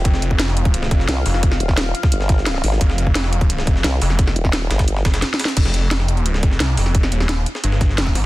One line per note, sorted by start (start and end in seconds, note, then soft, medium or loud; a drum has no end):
0.00 5.53 F4 medium
0.00 5.53 C5 medium
0.05 0.90 F1 medium
0.05 5.54 F5 medium
0.05 kick loud
0.05 closed hi-hat medium
0.14 snare medium
0.22 closed hi-hat medium
0.31 kick medium
0.39 snare loud
0.39 closed hi-hat medium
0.39 closed hi-hat loud
0.48 snare medium
0.57 closed hi-hat medium
0.65 kick loud
0.65 closed hi-hat soft
0.74 closed hi-hat medium
0.74 closed hi-hat loud
0.83 snare medium
0.91 1.07 F1 loud
0.91 kick loud
0.91 closed hi-hat medium
1.00 snare soft
1.08 1.24 C2 loud
1.08 snare loud
1.08 closed hi-hat medium
1.26 1.59 F1 loud
1.26 snare medium
1.26 closed hi-hat medium
1.26 open hi-hat medium
1.34 snare soft
1.43 kick loud
1.43 closed hi-hat medium
1.52 snare medium
1.52 snare soft
1.60 1.93 D#1 loud
1.60 closed hi-hat medium
1.69 kick medium
1.69 snare soft
1.77 snare loud
1.77 closed hi-hat loud
1.77 closed hi-hat medium
1.95 closed hi-hat medium
2.03 kick loud
2.03 snare medium
2.12 2.62 G1 medium
2.12 closed hi-hat loud
2.12 closed hi-hat medium
2.21 snare soft
2.29 kick loud
2.29 snare soft
2.29 closed hi-hat medium
2.38 snare soft
2.46 snare loud
2.46 closed hi-hat loud
2.46 closed hi-hat medium
2.55 snare soft
2.64 2.79 G#1 loud
2.64 snare soft
2.64 closed hi-hat medium
2.64 open hi-hat medium
2.72 snare medium
2.81 3.66 F1 loud
2.81 kick loud
2.81 closed hi-hat medium
2.81 closed hi-hat loud
2.90 snare medium
2.98 closed hi-hat medium
3.07 kick medium
3.15 snare loud
3.15 closed hi-hat medium
3.15 closed hi-hat loud
3.24 snare medium
3.33 closed hi-hat medium
3.41 kick loud
3.41 closed hi-hat soft
3.50 closed hi-hat loud
3.50 closed hi-hat medium
3.58 snare medium
3.67 3.83 F1 loud
3.67 kick loud
3.67 closed hi-hat medium
3.76 snare soft
3.84 4.00 C2 loud
3.84 snare loud
3.84 closed hi-hat loud
3.84 closed hi-hat medium
4.02 4.35 F1 loud
4.02 snare medium
4.02 closed hi-hat medium
4.02 open hi-hat medium
4.10 snare soft
4.19 kick loud
4.19 closed hi-hat medium
4.27 snare medium
4.27 snare soft
4.36 4.69 D#1 loud
4.36 closed hi-hat medium
4.45 kick medium
4.45 snare soft
4.53 snare loud
4.53 closed hi-hat medium
4.70 5.04 G1 loud
4.70 snare loud
4.70 closed hi-hat medium
4.79 kick loud
4.79 snare loud
4.79 closed hi-hat medium
4.88 closed hi-hat loud
4.88 closed hi-hat medium
4.96 snare soft
5.05 5.22 F1 medium
5.05 kick loud
5.05 snare loud
5.05 closed hi-hat medium
5.14 snare loud
5.14 closed hi-hat medium
5.22 snare medium
5.22 snare loud
5.22 closed hi-hat loud
5.22 closed hi-hat medium
5.34 snare medium
5.39 snare loud
5.39 closed hi-hat medium
5.39 open hi-hat medium
5.45 snare loud
5.48 snare loud
5.48 closed hi-hat medium
5.57 6.42 F1 medium
5.57 kick loud
5.57 closed hi-hat loud
5.57 closed hi-hat medium
5.57 crash loud
5.65 snare medium
5.74 closed hi-hat medium
5.91 snare loud
5.91 closed hi-hat loud
5.91 closed hi-hat medium
6.00 snare medium
6.08 closed hi-hat medium
6.17 closed hi-hat soft
6.26 closed hi-hat loud
6.26 closed hi-hat medium
6.34 snare medium
6.43 6.59 F1 loud
6.43 kick loud
6.43 closed hi-hat medium
6.52 snare soft
6.60 6.76 C2 loud
6.60 snare loud
6.60 closed hi-hat loud
6.60 closed hi-hat medium
6.77 7.11 F1 loud
6.77 snare medium
6.77 closed hi-hat medium
6.77 open hi-hat medium
6.86 snare soft
6.95 kick loud
6.95 closed hi-hat medium
7.03 snare medium
7.12 7.45 D#1 loud
7.12 closed hi-hat medium
7.21 snare medium
7.21 snare soft
7.29 snare loud
7.29 closed hi-hat loud
7.29 closed hi-hat medium
7.46 closed hi-hat medium
7.55 snare medium
7.64 8.14 G1 loud
7.64 closed hi-hat loud
7.64 closed hi-hat medium
7.72 snare soft
7.81 kick loud
7.81 snare soft
7.81 closed hi-hat medium
7.90 snare soft
7.98 snare loud
7.98 closed hi-hat medium
7.98 closed hi-hat loud
8.07 kick medium
8.07 snare soft
8.15 8.26 G#1 loud
8.15 snare soft
8.15 closed hi-hat medium
8.15 open hi-hat medium